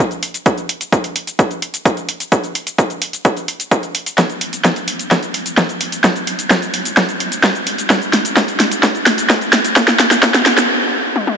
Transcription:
0.11 closed hi-hat, shaker
0.23 open hi-hat
0.34 open hi-hat, shaker
0.46 kick, closed hi-hat, shaker
0.58 closed hi-hat, shaker
0.69 open hi-hat
0.81 closed hi-hat, shaker
0.92 kick, closed hi-hat, shaker
1.04 open hi-hat, shaker
1.16 open hi-hat
1.27 closed hi-hat, shaker
1.39 kick, closed hi-hat, shaker
1.51 closed hi-hat, shaker
1.62 open hi-hat
1.74 closed hi-hat, shaker
1.85 kick, closed hi-hat, shaker
1.97 closed hi-hat, shaker
2.09 open hi-hat
2.20 closed hi-hat, shaker
2.32 kick, closed hi-hat, shaker
2.44 closed hi-hat, shaker
2.55 open hi-hat
2.67 closed hi-hat, shaker
2.78 kick, closed hi-hat, shaker
2.90 closed hi-hat, shaker
3.02 open hi-hat
3.13 closed hi-hat, shaker
3.25 kick, closed hi-hat, shaker
3.37 closed hi-hat, shaker
3.48 open hi-hat
3.60 closed hi-hat, shaker
3.71 kick, closed hi-hat, shaker
3.83 closed hi-hat, shaker
3.95 open hi-hat
4.06 open hi-hat, shaker
4.18 kick, snare, closed hi-hat, shaker
4.30 closed hi-hat, shaker
4.41 open hi-hat
4.53 closed hi-hat, shaker
4.64 kick, snare, closed hi-hat, shaker
4.76 open hi-hat, shaker
4.88 open hi-hat
4.99 closed hi-hat, shaker
5.11 kick, snare, closed hi-hat, shaker
5.23 closed hi-hat, shaker
5.34 open hi-hat
5.46 closed hi-hat, shaker
5.57 kick, snare, closed hi-hat, shaker
5.69 closed hi-hat, shaker
5.81 open hi-hat
5.92 closed hi-hat, shaker
6.04 kick, snare, closed hi-hat, shaker
6.16 closed hi-hat, shaker
6.27 open hi-hat
6.39 closed hi-hat, shaker
6.50 kick, snare, closed hi-hat, shaker
6.62 closed hi-hat, shaker
6.74 open hi-hat
6.85 closed hi-hat, shaker
6.97 kick, snare, closed hi-hat, shaker
7.09 closed hi-hat, shaker
7.20 open hi-hat
7.32 closed hi-hat, shaker
7.44 kick, snare, closed hi-hat, shaker
7.55 closed hi-hat, shaker
7.67 open hi-hat
7.78 open hi-hat, shaker
7.90 kick, snare, closed hi-hat, shaker
8.02 closed hi-hat, shaker
8.13 snare, open hi-hat
8.25 closed hi-hat, shaker
8.37 kick, snare, closed hi-hat, shaker
8.48 open hi-hat, shaker
8.60 snare, open hi-hat
8.71 closed hi-hat, shaker
8.83 kick, snare, closed hi-hat, shaker
8.95 closed hi-hat, shaker
9.06 snare, open hi-hat
9.18 closed hi-hat, shaker
9.30 kick, snare, closed hi-hat, shaker
9.41 closed hi-hat, shaker
9.53 snare, open hi-hat
9.65 closed hi-hat, shaker
9.76 kick, snare, closed hi-hat, shaker
9.88 snare, closed hi-hat, shaker
9.99 snare, open hi-hat
10.11 snare, closed hi-hat, shaker
10.23 kick, snare, closed hi-hat, shaker
10.34 snare, open hi-hat, shaker
10.46 snare, open hi-hat
10.58 snare, closed hi-hat, shaker
11.16 high tom
11.27 high tom

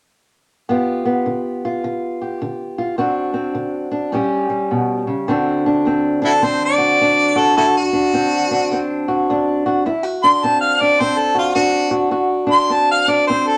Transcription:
0.69 G2 B3 F4 G4
1.05 B3
1.26 D3
1.65 F4
1.84 D3
2.21 G4
2.42 D3
2.78 F4
2.98 D2 C4 D4 F#4
3.34 C4
3.55 D3
3.91 D4
4.12 A2 G3 C#4 G4
4.50 G3
4.71 B2
5.07 C#3
5.28 D2 D3 C4 D4 F#4
5.66 D4
5.85 D2 C4
6.22 D4 E4 F#4 A4
6.42 D2 C4 C5
6.65 D5
6.78 F#4
7.01 D2 D4
7.35 F#4 A4
7.57 D2 E4 F#4 A4
7.77 F#4
7.93 D4
8.13 D2 C4
8.51 D4
8.71 D2 C4
9.08 F#4
9.30 D2 D4
9.66 F#4
9.86 D2 E4
10.03 F#4
10.23 D4 C6
10.43 D2 C4 A5
10.61 F5
10.81 D4 D5
11.00 D2 C4 C5
11.18 A4
11.35 F4 F#4
11.55 D2 D4 F#4
11.91 F#4
12.11 D2 F#4
12.47 D4
12.52 C6
12.70 D2 C4 A5
12.91 F5
13.08 D4 D5
13.27 D2 C4 C5
13.47 A4

